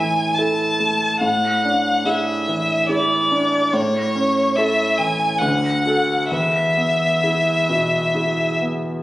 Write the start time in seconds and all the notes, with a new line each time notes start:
Already playing: A2 E3 A3 E4 A4 G#5
0.35 E4 A4 A5
0.80 A3
1.21 A2 F#5
1.65 D4
2.05 E4 G#4 E5
2.48 E3
2.89 E4 G#4 D5
3.31 D4
3.73 A2 C#5
4.15 C#4
4.56 E4 A4 E5
4.97 E3 G#5
5.39 D2 F#5
5.86 F#4 A4
6.31 E2 E5
6.77 B3
7.24 E4 G#4
7.69 B2
8.14 E4 G#4
8.61 B3